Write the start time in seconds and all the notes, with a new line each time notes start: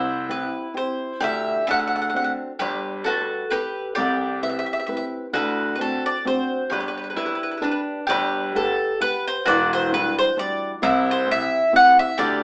Already playing: C2 C3 E4 C5
0.29 C4 E4 G4 B4
0.74 C4 E4 G4 C5
1.20 D2 D3 G4 E5
1.67 D2 D3 A4 F#5
1.79 F#5
1.87 F#5
1.96 F#5
2.02 F#5
2.10 F#5
2.14 C4 D4 F#4 F#5
2.24 F#5
2.59 G1 G3 G4 B4
3.04 G3 F#4 A4 B4
3.50 G4 A4 B4
3.95 C2 C3 G4 D5
4.42 C4 E4 B4 E5
4.49 E5
4.59 E5
4.66 E5
4.73 E5
4.80 E5
4.86 C4 E4 B4 E5
4.97 E5
5.33 D2 D3 F#4 B4
5.75 C4 D4 B4
5.80 F#4 A4
6.06 D5
6.25 C4 D4 F#4 C5
6.70 G1 G3 G4 B4
6.80 B4
6.88 B4
6.97 B4
7.04 B4
7.10 B4
7.16 D4 E4 G4 B4
7.26 B4
7.35 B4
7.43 B4
7.51 B4
7.57 D4 G4 B4
7.62 D4 B4
7.71 B4
8.07 G1 G3 G4 B4
8.55 G4 A4 B4 F#5
9.00 G4 B4 F#5
9.27 C5
9.45 E1 E3 F#4 D5
9.73 C5
9.92 G3 D4 E4 B4
10.19 C5
10.37 G3 D4 E4 D5
10.82 C2 C3 E4
11.11 C5
11.27 C4 E4 G4
11.31 E5
11.72 C4 E4 G4 F#5
11.99 E5
12.18 D2 D3 G4 D5